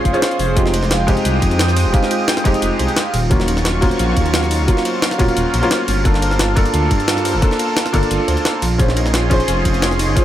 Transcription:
Already playing: G#3 C#4 F4 G#4 C5 C6, swell
0.05 F1 F4, kick, closed hi-hat
0.13 C#4 F4 G#4 C5, closed hi-hat
0.22 F5, snare, closed hi-hat
0.31 closed hi-hat
0.39 F1 C5, open hi-hat
0.55 G#3 C4 D#4 F4 G4 G5 D#6, kick, closed hi-hat
0.66 snare
0.74 C5, closed hi-hat, ride bell
0.83 snare
0.91 F5, snare, closed hi-hat
1.07 F1 G#3 C4 D#4 F4 G4, kick, closed hi-hat, ride bell
1.17 closed hi-hat
1.25 C2 F4, closed hi-hat
1.42 F2 D#4, kick, closed hi-hat, ride bell
1.51 closed hi-hat
1.59 F4, snare, closed hi-hat
1.68 snare
1.77 C5, open hi-hat, ride bell
1.86 D#1
1.93 G#3 C4 D#4 G4 F5, kick, closed hi-hat
2.03 snare
2.11 F4, closed hi-hat, ride bell
2.28 F4, snare, closed hi-hat
2.37 snare
2.44 F1 G#3 C4 D#4 G4, kick, closed hi-hat, ride bell
2.54 closed hi-hat
2.62 F1 F4, closed hi-hat
2.79 C2 C5, closed hi-hat, ride bell
2.88 closed hi-hat
2.96 F5, snare, closed hi-hat
3.14 D#1 F#3 F4 F5 C#6, open hi-hat, ride bell
3.30 F#3 A#3 C#4 F4, kick, closed hi-hat
3.40 snare
3.48 D#4, closed hi-hat, ride bell
3.57 snare
3.65 F4, snare, closed hi-hat
3.81 D#1 F#3 A#3 C#4 F4 C5, kick, closed hi-hat, ride bell
3.91 closed hi-hat
3.99 A#1 F5, closed hi-hat
4.17 D#2 F4, kick, closed hi-hat, ride bell
4.26 closed hi-hat
4.34 F4, snare, closed hi-hat
4.43 snare
4.51 D#4, open hi-hat, ride bell
4.60 C#2
4.67 F#3 A#3 C#4 F4, kick, closed hi-hat
4.77 snare
4.85 C5, closed hi-hat, ride bell
5.02 F5, snare, closed hi-hat
5.11 snare
5.18 D#1 F#3 A#3 C#4 F4, kick, closed hi-hat, ride bell
5.28 closed hi-hat
5.37 D#1 F4, closed hi-hat
5.54 A#1 C5, closed hi-hat, ride bell
5.62 F#3 A#3 C#4 F4, closed hi-hat
5.71 C5, snare, closed hi-hat
5.88 G1 F4, open hi-hat, ride bell
6.04 A#3 D4 F4 A4, kick, closed hi-hat
6.14 snare
6.22 C5, closed hi-hat, ride bell
6.31 snare
6.39 F4, snare, closed hi-hat
6.55 G1 A#3 D4 F4 A4, kick, closed hi-hat, ride bell
6.66 closed hi-hat
6.74 D2 F4, closed hi-hat
6.91 G2 D4, kick, closed hi-hat, ride bell
7.00 closed hi-hat
7.08 F4, snare, closed hi-hat
7.17 snare
7.25 C5, open hi-hat, ride bell
7.34 F1
7.41 A#3 D4 F4 A4, kick, closed hi-hat
7.51 snare
7.59 F4, closed hi-hat, ride bell
7.77 F4, snare, closed hi-hat
7.86 snare
7.93 G1 A#3 D4 F4 A4, kick, closed hi-hat, ride bell
8.03 closed hi-hat
8.11 G1 F4, closed hi-hat
8.28 D2 C5, closed hi-hat, ride bell
8.37 closed hi-hat
8.45 F4, snare, closed hi-hat
8.62 A#1 C#4 F4 G#4 C6, open hi-hat, ride bell
8.78 C#4 F4 G#4 C5, kick, closed hi-hat
8.89 snare
8.97 D#4, closed hi-hat, ride bell
9.06 snare
9.14 F4, snare, closed hi-hat
9.30 A#1 C#4 F4 G#4 C5, kick, closed hi-hat, ride bell
9.40 closed hi-hat
9.48 F1 F4, closed hi-hat
9.65 F1 F4, kick, closed hi-hat, ride bell
9.74 closed hi-hat
9.82 F4, snare, closed hi-hat
9.91 snare
9.99 D#4, open hi-hat, ride bell
10.08 G#1
10.16 C#4 F4 G#4 C5, kick, closed hi-hat

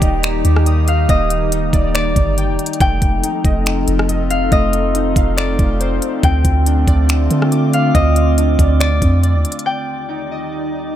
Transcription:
Already playing: D#3 G3 A#3 D#4 G4 D5 G5 D6
0.02 D#1 D#5, kick, closed hi-hat
0.23 finger snap, closed hi-hat
0.45 D#2, closed hi-hat
0.56 cross-stick
0.66 D#6, closed hi-hat
0.88 F5, closed hi-hat
1.09 D#1 A#3 D#5, kick, closed hi-hat
1.30 closed hi-hat
1.52 D#4, closed hi-hat
1.73 D#1 D5, kick, closed hi-hat
1.95 D5, finger snap, closed hi-hat
2.16 G1, kick, closed hi-hat
2.38 G5, closed hi-hat
2.48 F1
2.59 closed hi-hat
2.66 closed hi-hat
2.73 closed hi-hat
2.80 F1 F3 A3 C4 D#4 F4 A4 G5, kick, closed hi-hat
3.02 F1, kick, closed hi-hat
3.23 D#4, closed hi-hat
3.45 F1 D#5, kick, closed hi-hat
3.66 finger snap, closed hi-hat
3.88 F1, closed hi-hat
3.99 cross-stick
4.09 D#5, closed hi-hat
4.30 F5, closed hi-hat
4.52 F1 A3 D#5, kick, closed hi-hat
4.73 closed hi-hat
4.95 D#4, closed hi-hat
5.16 F1 F5, kick, closed hi-hat
5.37 D5, finger snap, closed hi-hat
5.59 F1, kick, closed hi-hat
5.80 C5, closed hi-hat
6.02 closed hi-hat
6.23 D2 D3 A3 C4 F4 G5 D6, kick, closed hi-hat
6.45 D2, kick, closed hi-hat
6.66 D4, closed hi-hat
6.87 D2 D5, kick, closed hi-hat
7.09 finger snap, closed hi-hat
7.31 D3, closed hi-hat
7.42 cross-stick
7.51 D6, closed hi-hat
7.73 F5, closed hi-hat
7.95 D2 C4 D#5, kick, closed hi-hat
8.16 closed hi-hat
8.38 D4, closed hi-hat
8.59 D2 D5, kick, closed hi-hat
8.80 D5, finger snap, closed hi-hat
9.02 F2, kick, closed hi-hat
9.23 D5, closed hi-hat
9.34 D#2
9.45 closed hi-hat
9.52 closed hi-hat
9.59 closed hi-hat
9.66 D#2 D#3 G3 D#4 G4 D5 G5 D6
10.09 D#4
10.31 D#5

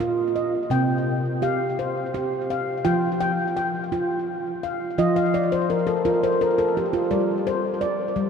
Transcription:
Already playing: A#2 A#4 D#5
0.00 F4
0.36 D#5
0.70 C3 C4 G5
1.42 G4 F5
1.79 C5
2.14 G4
2.50 F5
2.85 F3 F4 G5
3.20 G5
3.57 G5
3.92 F4
4.63 F5
4.98 F3 F4 D#5
5.16 F5
5.34 D5
5.52 C5
5.70 A#4
5.87 A4
6.05 F4 A#4
6.23 C5
6.41 A#4
6.58 A4
6.77 G4
6.93 F4
7.11 G3 D5
7.47 C5
7.81 D5
8.16 G3

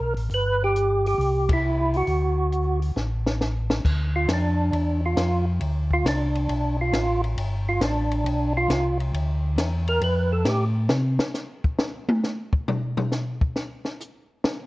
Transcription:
Already playing: A#4
0.00 B1
0.15 A1, open hi-hat
0.30 G1, open hi-hat
0.34 B4
0.64 G4
0.76 closed hi-hat
1.06 G4, open hi-hat
1.18 C2, open hi-hat
1.49 kick, ride
1.53 E4
1.94 F#4, open hi-hat
2.07 D2, open hi-hat
2.52 closed hi-hat
2.82 open hi-hat
2.96 A1, snare
3.26 snare
3.41 snare
3.70 snare
3.84 D2, kick, crash
4.16 F4
4.28 F2, snare, hi-hat pedal, ride
4.33 D4
4.72 E2, ride
5.06 F4
5.16 F2, snare, hi-hat pedal, ride
5.61 D2, ride
5.91 F4, kick
6.05 C2 D4, snare, hi-hat pedal, ride
6.35 ride
6.49 B1, ride
6.81 F4
6.92 A1, snare, hi-hat pedal, ride
7.24 ride
7.37 G1, ride
7.69 F4
7.80 A1, snare, hi-hat pedal, ride
7.84 D4
8.12 ride
8.24 B1, ride
8.57 F4
8.68 C2, snare, hi-hat pedal, ride
9.00 ride
9.14 D2, ride
9.56 E2, snare, hi-hat pedal, ride
9.87 A#4, ride
10.01 F2 B4, ride
10.33 A4
10.45 A2 G4, snare, hi-hat pedal, ride
10.89 C3, snare
11.19 snare
11.34 snare, hi-hat pedal
11.64 kick
11.78 snare
12.09 high tom
12.24 snare, hi-hat pedal
12.53 kick
12.68 floor tom
12.97 floor tom
13.12 snare, hi-hat pedal
13.41 kick
13.56 snare
13.85 snare
14.00 hi-hat pedal
14.44 snare

